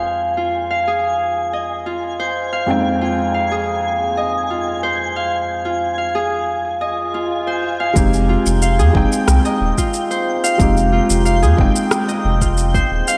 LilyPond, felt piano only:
\new Staff \with { instrumentName = "Felt piano" } { \time 4/4 \key f \minor \tempo 4 = 91 <f, aes c' ees' g''>1 | <f, aes c' ees' g''>1~ | <f, aes c' ees' g''>1 | <aes c' ees' g'>4. <aes c' ees' g''>2~ <aes c' ees' g''>8 |
<aes c' ees' g'>4. <aes c' ees' g''>2~ <aes c' ees' g''>8 | }